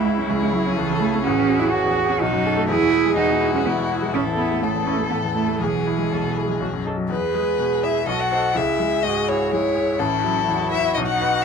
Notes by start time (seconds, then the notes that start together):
Already playing: C#2 C#3 E4
0.04 G#3 E4
0.18 C#4
0.27 C#2 G#3 G#4
0.43 C#3
0.52 F#3 E4
0.67 C#4
0.77 C#2 E3 A4
0.91 C#3
1.00 A3 E4
1.15 C#4
1.24 A1 C#4 F#4 G#4
1.38 E2
1.49 F#4
1.59 C#4 E4
1.71 A1 F#4
1.85 E2
1.98 F#4
2.10 C#4
2.21 B1 D#4 F#4
2.33 F#2
2.44 F#4 A4
2.57 A3
2.68 E2 E4 G#4
2.81 B2
2.93 E4
3.06 G#3
3.16 E2 D#4 F#4
3.29 B2
3.41 E4
3.53 G#3 C#4
3.65 E2 B3 E4
3.77 B2
3.90 E4
4.02 G#3
4.13 A1 C#4 E4 A4
4.27 E2
4.37 B3 E4
4.51 A3
4.61 A1 A3 A4
4.75 E2
4.86 C#4 E4
4.97 A3
5.09 A1 B3
5.24 E2
5.34 A3 E4
5.48 A3
5.59 B1 E3 G#4
5.74 B2
5.87 E4
5.99 G#3
6.11 B1 A4
6.24 B2
6.36 E4 G#4
6.48 G#3
6.60 B1 F#4
6.73 F#2
6.85 D#4 A4
6.97 F#3
7.09 E2 G#4 B4
7.35 G#3
7.59 B2
7.83 E4 E5
8.07 B1 F#4 A4 D#5
8.20 F#5
8.32 D#4 C5
8.54 C#2 E4 G#4 E5
8.79 G#3
9.03 G#2 F#4 D#5
9.28 E4 C#5
9.51 G#3 E4 C#5
9.75 C#5
9.99 A1 C#4 E4 A4
10.24 F#3
10.48 E2 F#4
10.71 E4 E5
10.94 B1 D#4 D#5
11.06 F#5
11.21 D#4 B4